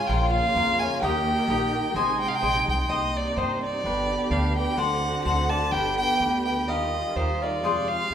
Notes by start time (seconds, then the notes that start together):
Already playing: F4
0.07 A#1 A#3 F4 A#4 C#5 F5 G5
0.11 C#3
0.31 F5
0.55 F2 F4 A#4 C#5 F5
0.79 A#4 C#5 F5 G#5
1.02 D#2 D#3 G4 A#4 D#5 G5
1.48 A#1 G4 A#4 D#5 G5
1.94 G#1 C3 G#3 D#4 G#4 C5 D#5 G#5
2.20 G5
2.28 F5
2.35 G5
2.41 A#1 G#4 C5 D#5 G#5
2.68 C2 G5
2.89 C2 C3 A#3 D#4 C5 D#5 G5 A#5
3.17 D5
3.36 G2 C5 D#5 G5 A#5
3.63 D5
3.84 G1 D3 B3 D4 G4 B4 D5 G5
4.30 D2 D4 B4 D5 F5 G5
4.56 B4 D5 G5
4.77 D2 C4 F#4 A4 C5 D5 F#5
5.25 D2 A4 C5 D5 F#5
5.49 C5 D5 F#5 A5
5.71 G1 B3 D4 G4 B4 G5
5.97 G5
6.20 D2 D4 G4 B4 G5
6.45 G4 B4 G5
6.67 D#2 D#3 G3 F4 G4 A#4 D#5 F5
7.16 D#2 G4 A#4 C5 D#5 F5
7.42 A#4 D5 D#5 F5
7.63 F2 C3 G#3 F4 G#4 C5 F5
7.88 F5
8.10 F#2 F4